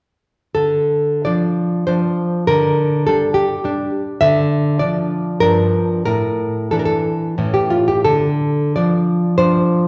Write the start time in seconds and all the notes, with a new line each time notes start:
0.55 D3 A4
1.25 F3 D4 D5
1.87 F3 D4 C5
2.47 D3 A#4
3.07 G3 D4 A4
3.34 G4
3.64 G3 D4
4.21 D3 E5
4.79 F3 D4 D5
5.40 G2 F3 D4 A#4
6.05 A2 A#4
6.71 E3 D4 A4
6.79 A#4
6.85 A4
7.38 A2 E3 C#4
7.54 G4
7.70 F4
7.88 G4
8.04 D3 A4
8.76 F3 D4 D5
9.38 F3 D4 C5